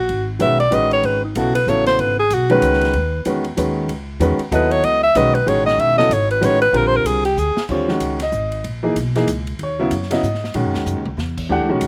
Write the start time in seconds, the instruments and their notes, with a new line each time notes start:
Already playing: alto saxophone F#4
0.09 upright bass G#1, ride
0.39 upright bass B1, upright piano D#3 G#3 C#4 F#4 B4, alto saxophone E5, hi-hat pedal, ride
0.60 alto saxophone D5, ride
0.71 upright bass A1, upright piano D#3 G#3 C#4 F#4 B4, alto saxophone D#5, hi-hat pedal, ride
0.91 alto saxophone C#5, ride
1.03 upright bass G#1, alto saxophone B4, ride
1.24 alto saxophone D#4
1.35 upright bass B1, upright piano C#3 F#3 B3 E4 A4, alto saxophone F#4, hi-hat pedal, ride
1.55 alto saxophone B4, ride
1.67 upright bass A1, upright piano C#3 F#3 B3 E4 A4, alto saxophone C#5, hi-hat pedal
1.86 alto saxophone C5, snare, ride
1.99 upright bass G#1, alto saxophone B4, ride
2.19 alto saxophone G#4
2.30 upright bass B1, alto saxophone F#4, hi-hat pedal, ride
2.50 upright piano D#3 G#3 C#4 F#4 B4, alto saxophone B4, ride
2.62 upright bass C#2, hi-hat pedal, ride
2.73 snare
2.81 snare, ride
2.93 upright bass D#2, ride
3.25 upright bass E2, upright piano D#3 G#3 C#4 F#4 B4, hi-hat pedal, ride
3.44 ride
3.57 upright bass D#2, upright piano D#3 G#3 C#4 F#4 B4, hi-hat pedal, ride
3.88 upright bass C#2, ride
4.20 upright bass E2, upright piano D#3 G#3 C#4 F#4 B4, hi-hat pedal, ride
4.39 muted upright bass stroke, ride
4.51 upright bass D#2, upright piano F#3 B3 E4 A4 D#5, alto saxophone B4, hi-hat pedal, ride
4.71 alto saxophone C#5, ride
4.83 upright bass C#2, alto saxophone D#5, ride
5.03 alto saxophone E5
5.15 upright bass B1, upright piano D#3 G#3 C#4 F#4 B4, alto saxophone D#5, hi-hat pedal, ride
5.35 alto saxophone B4, ride
5.46 upright bass A1, upright piano D#3 G#3 C#4 F#4 G#4, alto saxophone C#5, ride
5.66 alto saxophone D#5, snare
5.78 upright bass E1, alto saxophone E5, ride
5.97 upright piano C#3 F#3 B3 E4 A4, alto saxophone D#5, snare
6.09 upright bass G#1, alto saxophone C#5, hi-hat pedal, ride
6.31 alto saxophone B4, ride
6.41 upright bass A1, upright piano D#3 G#3 C#4 F#4 B4, hi-hat pedal, ride
6.45 alto saxophone C#5
6.62 alto saxophone B4, ride
6.72 upright bass A#1, upright piano D3 G3 C4 F4 A#4, alto saxophone A#4, ride
6.87 alto saxophone C5
6.96 alto saxophone A#4
7.04 upright bass C2, alto saxophone G#4, hi-hat pedal, ride
7.25 alto saxophone G4, ride
7.37 upright bass D2, alto saxophone G#4, hi-hat pedal
7.56 muted upright bass stroke, snare
7.69 upright bass D#2, upright piano D3 G3 C4 F4 C#5, kick, crash
7.88 upright piano D#3 G#3 C#4 F#4, snare
8.00 upright bass C#2, hi-hat pedal, ride
8.20 upright piano D#5, snare, ride
8.32 upright bass G#1, hi-hat pedal
8.52 ride
8.64 upright bass A#1, ride
8.83 upright piano E3 A#3 D#4 G#4
8.96 upright bass B1, hi-hat pedal, ride
9.15 upright piano E3 A#3 D#4 G#4, snare, ride
9.27 upright bass C#2, hi-hat pedal, ride
9.47 ride
9.59 upright bass D#2, ride
9.63 upright piano C#5
9.79 upright piano C#3 F#3 B3 E4
9.91 upright bass F#2, hi-hat pedal, ride
10.02 snare
10.10 upright piano C#3 F#3 B3 E4 D#5, snare, ride
10.23 upright bass G#2, hi-hat pedal
10.34 snare
10.44 snare
10.54 upright bass A#2, upright piano D#3 G#3 C#4 F#4, ride
10.65 upright bass F#2
10.74 upright bass D#2, snare
10.86 upright bass F#2, hi-hat pedal, mid tom
10.96 upright bass D#2
11.06 upright bass C#2, mid tom
11.17 upright bass E2, snare
11.38 kick, crash
11.49 upright bass D#2, upright piano E3 A3 D4 G4 F#5
11.60 upright bass C#2
11.69 upright bass A#1, upright piano D#3 G#3 C#4 F#4
11.81 upright bass C#2, hi-hat pedal, ride